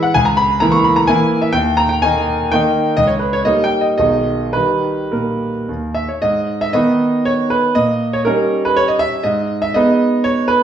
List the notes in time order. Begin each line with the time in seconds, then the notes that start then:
Already playing: E3 G#3 E4
0.03 F#5
0.14 C#2 G#5
0.25 A#5
0.37 B5
0.60 E3 A#3 E4 A#5
0.72 C#6
0.84 B5
0.96 A#5
1.07 E3 A#3 E4 G#5
1.42 E5
1.53 D#2 G5
1.77 A#5
1.89 G5
2.02 D#3 A#3 D#4 G#5
2.52 D#3 A#3 D#4 G5
2.97 C#2 D#5
3.07 C#5
3.19 B4
3.33 C#5
3.45 G3 A#3 D#4 D#5
3.64 G5
3.81 D#5
3.98 B1 D#3 G#3 D#4 D#5
4.53 D#3 G3 D#4 B4
5.12 A#2 A#4
5.69 D#2
5.95 E5
6.08 C#5
6.22 G#2 D#5
6.61 E5
6.73 D#3 B3 D#4 D#5
7.25 C#5
7.50 B4
7.75 A#2 D#5
8.13 C#5
8.25 G3 C#4 D#4 A#4
8.65 B4
8.76 C#5
8.88 D#5
8.99 E5
9.23 G#2 D#5
9.62 E5
9.74 G#3 B3 D#4 D#5
10.24 C#5
10.48 B4